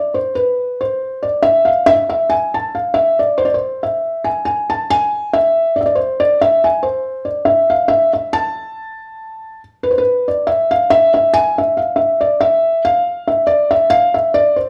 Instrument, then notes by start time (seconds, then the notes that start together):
felt piano
Already playing: D5
0.14 C5
0.35 B4
0.81 C5
1.23 D5
1.43 E5
1.65 F5
1.86 E5
2.10 E5
2.30 G#5
2.54 A5
2.75 F5
2.94 E5
3.19 D5
3.38 C5
3.45 D5
3.54 C5
3.83 E5
4.24 G#5
4.45 G#5
4.70 A5
4.90 G#5
5.33 E5
5.76 D5
5.81 E5
5.86 D5
5.95 C5
6.20 D5
6.41 E5
6.64 G#5
6.83 C5
7.25 D5
7.45 E5
7.70 F5
7.88 E5
8.13 E5
8.33 A5
9.83 B4
9.91 C5
9.98 B4
10.28 D5
10.47 E5
10.71 F5
10.90 E5
11.14 E5
11.34 G#5
11.58 E5
11.77 F5
11.96 E5
12.21 D5
12.41 E5
12.85 F5
13.28 E5
13.47 D5
13.71 E5
13.90 F5
14.14 E5
14.34 D5
14.56 C5